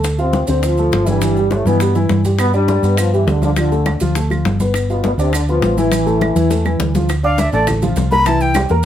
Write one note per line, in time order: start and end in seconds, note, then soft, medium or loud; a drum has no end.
0.00 0.43 D2 medium
0.00 0.14 A3 medium
0.00 0.14 A4 medium
0.00 high conga soft
0.00 maracas medium
0.05 high bongo medium
0.18 0.47 C3 medium
0.18 0.47 C4 medium
0.18 0.43 F4 medium
0.18 0.43 F5 medium
0.18 high conga soft
0.18 maracas soft
0.33 high bongo medium
0.33 high conga medium
0.33 maracas soft
0.47 0.89 D2 medium
0.47 0.63 D3 medium
0.47 0.73 C4 medium
0.47 0.63 D4 medium
0.47 0.73 C5 medium
0.47 maracas medium
0.63 1.08 F3 medium
0.63 1.07 F4 medium
0.63 high bongo medium
0.63 high conga soft
0.63 maracas medium
0.77 1.02 A3 medium
0.77 1.03 A4 medium
0.77 high conga soft
0.77 maracas soft
0.92 1.60 G1 medium
0.92 high bongo medium
0.92 low bongo medium
0.92 high conga medium
0.92 maracas soft
1.07 1.51 G2 medium
1.07 1.19 E3 medium
1.07 1.51 G3 loud
1.07 1.20 E4 medium
1.07 high conga medium
1.07 maracas medium
1.21 1.34 E3 medium
1.21 1.34 E4 medium
1.21 high bongo medium
1.21 high conga soft
1.21 maracas medium
1.36 1.61 G3 medium
1.36 1.61 G4 medium
1.36 high bongo soft
1.36 high conga soft
1.36 maracas soft
1.51 1.66 A2 medium
1.51 1.67 A3 medium
1.51 high bongo medium
1.51 high conga medium
1.51 maracas soft
1.65 2.06 G2 medium
1.65 1.96 B2 medium
1.65 1.78 E3 medium
1.65 1.96 B3 medium
1.65 1.78 E4 medium
1.65 high bongo soft
1.65 high conga soft
1.65 maracas medium
1.80 1.93 G3 medium
1.80 1.93 G4 medium
1.80 high bongo medium
1.80 high conga soft
1.80 maracas medium
1.95 2.19 E3 medium
1.95 2.19 E4 medium
1.95 high bongo soft
1.95 maracas soft
2.09 2.77 G2 medium
2.09 high bongo medium
2.09 low bongo medium
2.09 high conga medium
2.09 maracas soft
2.25 2.49 G3 medium
2.25 2.49 G4 medium
2.25 high conga medium
2.25 maracas medium
2.39 2.53 B2 medium
2.39 2.53 B3 loud
2.39 high bongo medium
2.39 claves medium
2.39 maracas medium
2.53 2.95 G2 medium
2.53 2.95 G3 medium
2.53 2.78 D4 medium
2.53 2.78 D5 medium
2.53 high conga soft
2.53 maracas soft
2.68 high bongo medium
2.68 high conga medium
2.68 maracas soft
2.83 3.24 G2 medium
2.83 3.08 B3 medium
2.83 3.08 B4 medium
2.83 maracas medium
2.97 3.13 F3 medium
2.97 3.13 F4 medium
2.97 high bongo medium
2.97 high conga soft
2.97 claves medium
2.97 maracas medium
3.13 3.28 E3 medium
3.13 3.37 G3 medium
3.13 3.28 E4 medium
3.13 3.37 G4 medium
3.13 high conga soft
3.13 maracas soft
3.27 3.95 D2 medium
3.27 3.42 D3 medium
3.27 3.43 D4 medium
3.27 high bongo medium
3.27 low bongo medium
3.27 high conga medium
3.27 maracas soft
3.42 3.50 D3 medium
3.42 3.54 F3 medium
3.42 3.51 D4 medium
3.42 3.54 F4 medium
3.42 high conga medium
3.42 maracas medium
3.56 3.98 D3 medium
3.56 3.69 F3 medium
3.56 3.99 D4 medium
3.56 3.69 F4 medium
3.56 high bongo medium
3.56 high conga soft
3.56 claves medium
3.56 maracas medium
3.72 3.96 A3 medium
3.72 3.96 A4 medium
3.72 high bongo soft
3.72 high conga soft
3.72 maracas soft
3.86 high bongo medium
3.86 high conga medium
3.86 claves medium
3.86 maracas soft
4.00 4.42 D2 medium
4.00 4.13 F3 medium
4.00 4.13 F4 medium
4.00 high bongo soft
4.00 high conga soft
4.00 maracas medium
4.15 4.28 A3 medium
4.15 4.28 A4 medium
4.15 high bongo medium
4.15 high conga soft
4.15 maracas medium
4.30 4.54 F3 medium
4.30 4.55 F4 medium
4.30 high bongo soft
4.30 high conga soft
4.30 claves medium
4.30 maracas soft
4.45 5.13 G1 medium
4.45 high bongo medium
4.45 low bongo medium
4.45 high conga medium
4.45 maracas soft
4.60 4.84 B3 medium
4.60 4.84 B4 medium
4.60 high conga medium
4.60 maracas medium
4.74 high bongo medium
4.74 claves medium
4.74 maracas medium
4.90 5.03 B2 medium
4.90 5.03 B3 medium
4.90 5.14 F4 medium
4.90 5.14 F5 medium
4.90 high conga soft
4.90 maracas soft
5.04 5.11 B2 medium
5.04 5.11 B3 medium
5.04 high bongo medium
5.04 high conga loud
5.04 maracas soft
5.18 5.59 D2 medium
5.18 5.33 C3 medium
5.18 5.33 C4 medium
5.18 5.43 D4 medium
5.18 5.43 D5 medium
5.18 maracas medium
5.33 5.40 D3 medium
5.33 5.40 D4 medium
5.33 high bongo medium
5.33 high conga soft
5.33 claves medium
5.33 maracas medium
5.48 5.76 F3 medium
5.48 5.73 B3 medium
5.48 5.75 F4 medium
5.48 5.73 B4 medium
5.48 high conga soft
5.48 maracas soft
5.62 6.30 A1 medium
5.62 high bongo medium
5.62 low bongo medium
5.62 high conga medium
5.62 maracas soft
5.77 5.89 E3 medium
5.77 6.77 E3 medium
5.77 5.90 E4 medium
5.77 6.77 E4 medium
5.77 high conga medium
5.77 maracas medium
5.92 6.04 E3 medium
5.92 6.04 E4 medium
5.92 high bongo medium
5.92 claves medium
5.92 maracas medium
6.06 6.30 A3 medium
6.06 6.31 A4 medium
6.06 high bongo soft
6.06 high conga soft
6.06 maracas soft
6.21 high bongo medium
6.21 high conga medium
6.21 claves medium
6.21 maracas soft
6.36 6.77 E2 medium
6.36 6.48 E3 medium
6.36 6.48 E4 medium
6.36 high bongo soft
6.36 maracas medium
6.50 6.62 A3 medium
6.50 6.62 A4 medium
6.50 high bongo medium
6.50 maracas medium
6.65 6.90 E3 medium
6.65 6.90 E4 medium
6.65 low bongo medium
6.65 claves medium
6.65 maracas soft
6.80 7.48 D2 medium
6.80 low bongo loud
6.80 high conga medium
6.80 maracas soft
6.95 7.07 F3 medium
6.95 7.07 F4 medium
6.95 low bongo medium
6.95 high conga medium
6.95 maracas medium
7.09 high bongo medium
7.09 claves medium
7.09 maracas medium
7.23 7.48 D4 medium
7.23 7.48 D5 medium
7.23 7.41 F5 medium
7.23 7.48 D6 medium
7.23 high bongo soft
7.23 high conga soft
7.38 7.52 E5 medium
7.38 high bongo medium
7.38 high conga medium
7.38 maracas medium
7.52 7.94 A1 medium
7.52 7.77 A3 medium
7.52 7.77 A4 medium
7.52 7.66 D5 medium
7.52 7.78 A5 medium
7.52 high bongo soft
7.52 high conga soft
7.52 maracas soft
7.67 high bongo medium
7.67 high conga soft
7.67 low conga medium
7.67 claves medium
7.67 maracas medium
7.82 8.06 F3 medium
7.82 8.07 F4 medium
7.82 8.07 F5 medium
7.82 high conga soft
7.82 low conga medium
7.82 maracas medium
7.96 8.64 C2 loud
7.96 high bongo soft
7.96 low bongo medium
7.96 high conga medium
7.96 maracas medium
8.11 8.24 A#3 medium
8.11 8.24 A#4 medium
8.11 8.24 A#5 medium
8.11 8.28 B5 loud
8.11 high bongo soft
8.11 high conga medium
8.11 maracas soft
8.26 8.50 E3 medium
8.26 8.51 E4 medium
8.26 8.51 E5 medium
8.26 8.43 A5 medium
8.26 high bongo medium
8.26 claves medium
8.26 maracas medium
8.40 8.56 G5 medium
8.40 high bongo soft
8.40 high conga soft
8.40 maracas medium
8.54 8.68 G3 medium
8.54 8.68 G4 medium
8.54 8.68 G5 medium
8.54 high bongo medium
8.54 high conga loud
8.54 claves medium
8.54 maracas medium
8.69 8.85 E2 medium
8.69 8.85 A#3 medium
8.69 8.85 A#4 medium
8.69 8.85 A#5 medium
8.69 high bongo soft
8.69 maracas soft